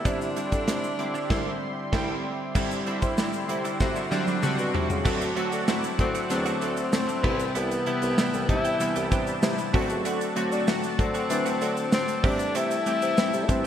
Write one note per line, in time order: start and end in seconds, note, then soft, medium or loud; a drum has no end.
0.00 2.51 D5 medium
0.05 0.40 C3 loud
0.05 0.25 D3 loud
0.05 0.27 G3 medium
0.05 0.25 G3 medium
0.05 0.25 C4 medium
0.05 0.21 D4 medium
0.05 1.93 D4 loud
0.05 0.26 E4 loud
0.05 0.20 E4 loud
0.05 2.53 G4 medium
0.05 2.53 E5 medium
0.05 2.53 C6 medium
0.05 kick loud
0.05 closed hi-hat medium
0.05 shaker medium
0.21 muted clean electric guitar stroke soft
0.21 shaker soft
0.36 0.56 D3 medium
0.36 0.56 G3 medium
0.36 0.52 G3 medium
0.36 0.57 C4 medium
0.36 0.51 D4 medium
0.36 0.57 E4 medium
0.36 0.51 E4 medium
0.36 closed hi-hat medium
0.36 shaker medium
0.52 0.64 D3 loud
0.52 0.66 G3 medium
0.52 0.67 D4 medium
0.52 0.67 E4 medium
0.52 kick medium
0.52 closed hi-hat medium
0.52 shaker soft
0.67 0.91 C3 medium
0.67 0.87 D3 medium
0.67 0.87 G3 medium
0.67 0.89 G3 medium
0.67 0.88 C4 medium
0.67 0.83 D4 medium
0.67 0.88 E4 medium
0.67 0.82 E4 medium
0.67 snare loud
0.67 closed hi-hat medium
0.67 shaker medium
0.83 muted clean electric guitar stroke soft
0.83 shaker medium
0.98 1.19 D3 medium
0.98 1.19 G3 medium
0.98 1.19 C4 medium
0.98 1.19 E4 medium
0.98 1.28 D6 medium
0.98 muted clean electric guitar stroke soft
0.98 closed hi-hat medium
1.14 1.30 G3 medium
1.14 1.29 D4 medium
1.14 1.29 E4 medium
1.14 shaker soft
1.29 1.52 C2 loud
1.29 1.51 D3 loud
1.29 1.51 G3 loud
1.29 1.52 G3 loud
1.29 1.52 C4 loud
1.29 1.52 D4 loud
1.29 1.51 E4 loud
1.29 1.52 E4 loud
1.29 1.51 C6 loud
1.29 kick loud
1.29 snare loud
1.29 crash medium
1.92 2.14 C2 loud
1.92 2.14 D3 loud
1.92 2.14 G3 loud
1.92 2.14 C4 loud
1.92 2.14 D4 loud
1.92 2.14 E4 loud
1.92 2.15 E4 loud
1.92 2.14 G5 loud
1.92 kick loud
1.92 snare loud
1.92 crash medium
2.55 2.79 C3 medium
2.55 2.75 D3 loud
2.55 2.75 G3 loud
2.55 2.77 G3 medium
2.55 2.75 C4 loud
2.55 2.71 D4 medium
2.55 2.75 E4 loud
2.55 2.70 E4 medium
2.55 5.03 G4 medium
2.55 5.03 D5 medium
2.55 5.03 E5 medium
2.55 5.03 C6 medium
2.55 kick loud
2.55 crash medium
2.55 shaker medium
2.71 muted clean electric guitar stroke soft
2.71 closed hi-hat medium
2.71 shaker soft
2.86 3.06 D3 medium
2.86 3.02 G3 medium
2.86 3.06 G3 medium
2.86 3.07 C4 medium
2.86 3.01 D4 medium
2.86 3.07 E4 loud
2.86 3.01 E4 medium
2.86 closed hi-hat medium
3.02 3.16 G3 soft
3.02 3.14 C4 medium
3.02 3.17 D4 medium
3.02 3.18 E4 medium
3.02 kick medium
3.02 closed hi-hat medium
3.02 shaker medium
3.17 3.37 D3 medium
3.17 3.38 G3 medium
3.17 3.39 G3 medium
3.17 3.38 C4 medium
3.17 3.33 D4 medium
3.17 3.38 E4 medium
3.17 3.32 E4 loud
3.17 snare loud
3.17 tambourine medium
3.17 shaker medium
3.33 muted clean electric guitar stroke soft
3.33 closed hi-hat soft
3.33 shaker medium
3.48 3.73 C3 loud
3.48 3.69 D3 medium
3.48 3.69 G3 medium
3.48 3.69 C4 medium
3.48 3.69 E4 medium
3.48 muted clean electric guitar stroke soft
3.48 closed hi-hat medium
3.65 3.79 G3 medium
3.65 3.79 D4 medium
3.65 3.80 E4 medium
3.65 closed hi-hat medium
3.65 shaker soft
3.80 4.04 C3 loud
3.80 4.00 D3 medium
3.80 4.00 G3 medium
3.80 4.00 C4 medium
3.80 4.01 F#4 loud
3.80 muted clean electric guitar stroke soft
3.80 kick medium
3.80 snare medium
3.80 shaker medium
3.96 4.10 G3 medium
3.96 4.11 D4 medium
3.96 4.11 E4 medium
3.96 shaker medium
4.11 4.31 D3 loud
4.11 4.33 G3 medium
4.11 4.31 G3 loud
4.11 4.32 C4 loud
4.11 4.27 D4 medium
4.11 4.32 D4 loud
4.11 4.26 E4 medium
4.11 high tom medium
4.11 shaker soft
4.27 muted clean electric guitar stroke soft
4.27 high tom medium
4.27 shaker soft
4.42 4.62 D3 loud
4.42 4.63 G3 loud
4.42 4.63 C4 loud
4.42 4.63 F#4 loud
4.42 mid tom medium
4.42 shaker medium
4.58 4.70 B2 medium
4.58 muted clean electric guitar stroke soft
4.58 shaker medium
4.74 4.86 C3 medium
4.74 4.94 D3 medium
4.74 4.95 G3 medium
4.74 4.94 G3 medium
4.74 4.94 C4 medium
4.74 4.89 D4 medium
4.74 4.88 E4 medium
4.74 4.94 F#4 loud
4.74 floor tom loud
4.89 5.01 C#3 medium
4.89 muted clean electric guitar stroke soft
4.89 floor tom loud
4.89 shaker soft
5.04 5.29 D2 loud
5.04 5.25 D3 loud
5.04 5.25 F#3 loud
5.04 5.26 A3 medium
5.04 5.25 A3 loud
5.04 5.25 C4 loud
5.04 5.20 C4 medium
5.04 5.25 F#4 loud
5.04 5.19 F#4 loud
5.04 7.22 A4 medium
5.04 7.22 D5 medium
5.04 7.22 F#5 medium
5.04 13.67 A5 medium
5.04 kick loud
5.04 crash loud
5.04 shaker medium
5.21 muted clean electric guitar stroke soft
5.21 closed hi-hat medium
5.21 shaker soft
5.36 5.56 D3 medium
5.36 5.56 F#3 medium
5.36 5.52 A3 medium
5.36 5.56 A3 medium
5.36 5.56 C4 medium
5.36 5.51 C4 medium
5.36 5.57 F#4 loud
5.36 5.50 F#4 medium
5.36 closed hi-hat medium
5.52 5.64 D3 loud
5.52 5.66 A3 medium
5.52 5.67 C4 medium
5.52 5.67 F#4 medium
5.52 closed hi-hat medium
5.52 shaker medium
5.67 5.88 D3 medium
5.67 5.88 F#3 medium
5.67 5.89 A3 medium
5.67 5.88 A3 medium
5.67 5.83 C4 medium
5.67 5.88 C4 medium
5.67 5.88 E4 loud
5.67 5.82 F#4 loud
5.67 snare loud
5.67 tambourine medium
5.67 shaker medium
5.83 muted clean electric guitar stroke soft
5.83 closed hi-hat medium
5.83 shaker medium
5.99 6.22 D2 medium
5.99 6.19 D3 medium
5.99 6.19 F#3 medium
5.99 6.19 A3 medium
5.99 6.19 C4 medium
5.99 6.29 C4 medium
5.99 6.20 F#4 medium
5.99 muted clean electric guitar stroke soft
5.99 kick medium
5.99 closed hi-hat medium
6.14 6.29 A3 medium
6.14 6.30 C4 medium
6.14 6.30 F#4 medium
6.14 closed hi-hat medium
6.14 shaker medium
6.30 6.54 E2 loud
6.30 6.50 D3 loud
6.30 6.50 F#3 medium
6.30 6.50 A3 medium
6.30 6.50 C4 loud
6.30 7.58 C4 medium
6.30 6.51 D4 loud
6.30 closed hi-hat medium
6.30 shaker medium
6.46 6.60 A3 medium
6.46 6.61 C4 medium
6.46 6.61 F#4 medium
6.46 closed hi-hat medium
6.46 shaker medium
6.61 6.85 D2 medium
6.61 6.81 D3 medium
6.61 6.81 F#3 medium
6.61 6.81 A3 medium
6.61 6.81 C4 medium
6.61 6.82 A4 medium
6.61 muted clean electric guitar stroke soft
6.61 closed hi-hat medium
6.61 shaker medium
6.77 muted clean electric guitar stroke medium
6.77 closed hi-hat medium
6.77 shaker medium
6.92 7.12 D3 medium
6.92 7.12 F#3 medium
6.92 7.13 A3 medium
6.92 7.13 C4 medium
6.92 7.13 E4 medium
6.92 snare loud
6.92 tambourine medium
6.92 shaker medium
7.08 muted clean electric guitar stroke soft
7.08 closed hi-hat soft
7.08 shaker medium
7.23 7.48 C2 loud
7.23 7.73 C3 loud
7.23 7.74 E3 medium
7.23 7.74 G3 medium
7.23 7.45 B3 medium
7.23 7.74 E4 loud
7.23 7.39 E4 medium
7.23 7.38 G4 loud
7.23 7.74 B4 medium
7.23 9.71 B4 medium
7.23 9.71 E5 medium
7.23 9.71 G5 medium
7.23 kick loud
7.23 crash medium
7.39 muted clean electric guitar stroke soft
7.39 closed hi-hat medium
7.39 shaker medium
7.55 7.79 C2 loud
7.55 7.76 B3 medium
7.55 8.49 B3 loud
7.55 7.70 E4 medium
7.55 7.69 G4 medium
7.55 closed hi-hat loud
7.55 shaker medium
7.71 muted clean electric guitar stroke medium
7.71 closed hi-hat medium
7.71 shaker medium
7.86 8.06 C3 medium
7.86 8.06 E3 medium
7.86 8.06 G3 medium
7.86 8.02 B3 medium
7.86 8.07 B3 medium
7.86 8.02 E4 medium
7.86 8.07 E4 medium
7.86 8.01 G4 medium
7.86 closed hi-hat medium
8.02 8.14 C2 loud
8.02 8.17 B3 medium
8.02 8.17 E4 medium
8.02 8.18 G4 medium
8.02 closed hi-hat medium
8.02 shaker medium
8.17 8.37 C3 medium
8.17 8.37 E3 medium
8.17 8.38 G3 medium
8.17 8.39 B3 medium
8.17 8.38 B3 medium
8.17 8.38 E4 medium
8.17 8.33 E4 medium
8.17 8.32 G4 medium
8.17 snare loud
8.17 tambourine medium
8.17 shaker medium
8.33 8.45 C2 medium
8.33 muted clean electric guitar stroke soft
8.33 closed hi-hat medium
8.33 shaker medium
8.49 8.69 C3 medium
8.49 8.72 C3 loud
8.49 8.69 E3 medium
8.49 8.69 G3 medium
8.49 8.69 B3 medium
8.49 8.69 D4 medium
8.49 9.08 E4 loud
8.49 muted clean electric guitar stroke soft
8.49 kick medium
8.49 closed hi-hat medium
8.65 8.79 B3 soft
8.65 8.80 E4 medium
8.65 8.80 G4 medium
8.65 closed hi-hat medium
8.65 shaker soft
8.80 9.00 C3 loud
8.80 9.00 E3 loud
8.80 9.00 G3 medium
8.80 9.00 B3 medium
8.80 9.01 E4 loud
8.80 muted clean electric guitar stroke soft
8.80 closed hi-hat loud
8.80 shaker medium
8.96 9.08 C2 medium
8.96 9.10 B3 medium
8.96 9.11 E4 medium
8.96 9.12 G4 medium
8.96 closed hi-hat medium
8.96 shaker medium
9.11 9.31 C3 medium
9.11 9.35 C3 loud
9.11 9.31 E3 medium
9.11 9.31 G3 medium
9.11 9.33 B3 medium
9.11 9.32 B3 medium
9.11 9.32 D4 medium
9.11 9.27 E4 medium
9.11 9.26 G4 loud
9.11 kick medium
9.11 closed hi-hat medium
9.11 shaker medium
9.27 muted clean electric guitar stroke soft
9.27 closed hi-hat medium
9.27 shaker soft
9.42 9.62 C3 medium
9.42 9.54 C3 loud
9.42 9.62 E3 medium
9.42 9.63 G3 medium
9.42 9.63 B3 medium
9.42 9.63 E4 loud
9.42 snare loud
9.42 tambourine medium
9.42 shaker medium
9.58 muted clean electric guitar stroke soft
9.58 closed hi-hat medium
9.58 shaker medium
9.73 9.86 D2 medium
9.73 10.24 D3 loud
9.73 10.24 F#3 medium
9.73 10.24 A3 medium
9.73 9.95 A3 medium
9.73 10.24 C4 medium
9.73 9.89 C4 loud
9.73 10.24 F#4 loud
9.73 9.88 F#4 medium
9.73 12.22 A4 medium
9.73 12.22 D5 medium
9.73 12.22 F#5 medium
9.73 kick loud
9.73 open hi-hat medium
9.89 10.01 C#2 medium
9.89 muted clean electric guitar stroke soft
9.89 closed hi-hat medium
9.89 shaker medium
10.05 10.29 D3 loud
10.05 10.27 A3 medium
10.05 10.21 C4 medium
10.05 10.20 F#4 loud
10.05 closed hi-hat medium
10.05 shaker medium
10.21 muted clean electric guitar stroke soft
10.21 closed hi-hat medium
10.21 shaker medium
10.36 10.56 D3 medium
10.36 10.56 F#3 medium
10.36 10.56 A3 medium
10.36 10.52 A3 medium
10.36 10.57 C4 medium
10.36 10.52 C4 medium
10.36 10.57 F#4 loud
10.36 10.51 F#4 medium
10.36 closed hi-hat medium
10.52 10.66 A3 medium
10.52 10.67 C4 medium
10.52 10.64 D4 loud
10.52 10.68 F#4 medium
10.52 closed hi-hat medium
10.52 shaker medium
10.67 10.87 D3 medium
10.67 10.87 F#3 medium
10.67 10.87 A3 medium
10.67 10.89 A3 loud
10.67 10.88 C4 medium
10.67 10.83 C4 medium
10.67 10.88 F#4 loud
10.67 10.82 F#4 medium
10.67 snare loud
10.67 tambourine medium
10.67 shaker medium
10.83 muted clean electric guitar stroke medium
10.83 closed hi-hat medium
10.83 shaker medium
10.98 11.19 D3 medium
10.98 11.22 D3 medium
10.98 11.19 F#3 medium
10.98 11.19 A3 medium
10.98 11.19 C4 medium
10.98 11.89 C4 loud
10.98 11.19 F#4 medium
10.98 muted clean electric guitar stroke soft
10.98 kick medium
10.98 closed hi-hat medium
11.14 11.29 A3 medium
11.14 11.29 C4 medium
11.14 11.30 F#4 medium
11.14 closed hi-hat medium
11.14 shaker medium
11.29 11.50 D3 loud
11.29 11.54 E3 loud
11.29 11.50 F#3 medium
11.29 11.50 A3 loud
11.29 11.50 C4 medium
11.29 11.50 D4 loud
11.29 muted clean electric guitar stroke soft
11.29 closed hi-hat loud
11.29 shaker medium
11.45 11.60 A3 medium
11.45 11.61 C4 medium
11.45 11.61 F#4 medium
11.45 closed hi-hat medium
11.45 shaker medium
11.61 11.81 D3 medium
11.61 11.85 D3 loud
11.61 11.81 F#3 medium
11.61 11.83 A3 medium
11.61 11.81 A3 medium
11.61 11.82 C4 medium
11.61 11.76 C4 medium
11.61 11.76 F#4 medium
11.61 11.82 A4 medium
11.61 closed hi-hat medium
11.61 shaker medium
11.77 muted clean electric guitar stroke soft
11.77 closed hi-hat soft
11.77 shaker medium
11.92 12.12 D3 medium
11.92 12.13 F#3 medium
11.92 12.13 A3 medium
11.92 12.13 C4 medium
11.92 12.26 C4 medium
11.92 12.13 D4 medium
11.92 snare loud
11.92 tambourine medium
11.92 shaker medium
12.08 muted clean electric guitar stroke soft
12.08 closed hi-hat medium
12.08 shaker medium
12.23 12.47 C3 loud
12.23 12.74 E3 medium
12.23 12.74 G3 medium
12.23 12.45 A3 medium
12.23 12.74 A3 medium
12.23 12.74 C4 medium
12.23 12.39 C4 loud
12.23 12.58 D4 loud
12.23 12.74 G4 medium
12.23 12.38 G4 loud
12.23 13.67 A4 medium
12.23 13.67 E5 medium
12.23 13.67 G5 medium
12.23 kick loud
12.23 open hi-hat medium
12.39 muted clean electric guitar stroke medium
12.39 closed hi-hat medium
12.39 shaker medium
12.55 12.79 C3 loud
12.55 12.77 A3 medium
12.55 12.71 C4 loud
12.55 13.67 E4 loud
12.55 12.70 G4 medium
12.55 closed hi-hat loud
12.55 shaker medium
12.71 muted clean electric guitar stroke medium
12.71 closed hi-hat medium
12.71 shaker medium
12.86 13.06 E3 medium
12.86 13.06 G3 medium
12.86 13.02 A3 medium
12.86 13.07 A3 medium
12.86 13.07 C4 medium
12.86 13.01 C4 medium
12.86 13.07 G4 medium
12.86 13.01 G4 medium
12.86 closed hi-hat medium
12.86 shaker medium
13.02 13.14 C3 loud
13.02 13.16 A3 soft
13.02 13.17 C4 medium
13.02 13.18 G4 medium
13.02 closed hi-hat medium
13.02 shaker medium
13.17 13.37 E3 medium
13.17 13.38 G3 medium
13.17 13.39 A3 medium
13.17 13.38 A3 medium
13.17 13.31 C4 loud
13.17 13.38 C4 medium
13.17 13.33 C4 medium
13.17 13.31 E4 loud
13.17 13.38 E4 medium
13.17 13.31 G4 loud
13.17 13.32 G4 medium
13.17 snare loud
13.17 tambourine medium
13.17 shaker medium
13.33 13.50 C3 loud
13.33 muted clean electric guitar stroke soft
13.33 closed hi-hat medium
13.33 shaker medium
13.48 13.67 E3 medium
13.48 13.67 G3 medium
13.48 13.67 A3 medium
13.48 13.62 C4 medium
13.48 13.67 C4 loud
13.48 13.67 C4 medium
13.48 13.67 D4 loud
13.48 13.62 E4 medium
13.48 13.62 G4 loud
13.48 muted clean electric guitar stroke soft
13.48 kick medium
13.48 closed hi-hat medium
13.48 shaker medium